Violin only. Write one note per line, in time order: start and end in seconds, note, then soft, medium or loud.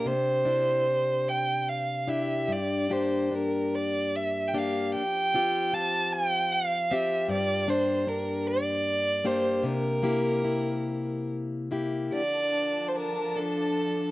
0.07 1.30 C5 medium
1.29 1.70 G5 medium
1.69 2.10 F5 medium
2.09 2.54 E5 medium
2.52 2.94 D5 medium
2.92 3.35 C5 medium
3.34 3.76 A#4 medium
3.75 4.17 D5 medium
4.16 4.49 E5 medium
4.48 4.59 G5 medium
4.58 4.93 F5 medium
4.94 5.75 G5 medium
5.74 6.14 A5 medium
6.13 6.53 G5 medium
6.52 6.92 F5 medium
6.91 7.29 E5 medium
7.32 7.71 D5 medium
7.70 8.10 C5 medium
8.09 8.48 A#4 medium
8.47 9.28 D5 medium
9.27 9.67 C5 medium
9.65 11.30 A#4 medium
12.13 12.90 D5 medium
12.88 12.97 C5 soft
12.96 13.38 A#4 medium
13.37 14.11 A4 medium